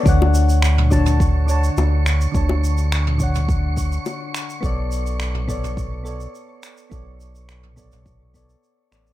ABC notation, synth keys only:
X:1
M:4/4
L:1/8
Q:1/4=105
K:D
V:1 name="Synth keys"
[D,Dcf]3 [D,Dca]2 [D,Dca]3 | [D,Dca]3 [D,Dcf]4- [D,Dcf] | [B,Acd]3 [B,Acd]2 [B,Acd]3 | [B,Acd]3 [B,Acd]2 [B,Acd]2 [B,Acd] |]